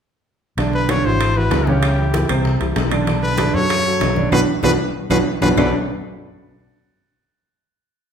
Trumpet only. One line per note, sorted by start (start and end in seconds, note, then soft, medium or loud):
0.75 0.91 B4 medium
0.90 1.07 C#5 medium
1.06 1.39 C5 loud
1.37 1.69 B4 medium
1.68 2.61 G4 medium
3.23 3.56 B4 medium
3.54 4.32 C#5 loud
4.33 4.40 B4 loud
4.64 4.71 B4 medium
5.10 5.18 B4 medium
5.42 5.49 B4 medium
5.58 5.73 B4 medium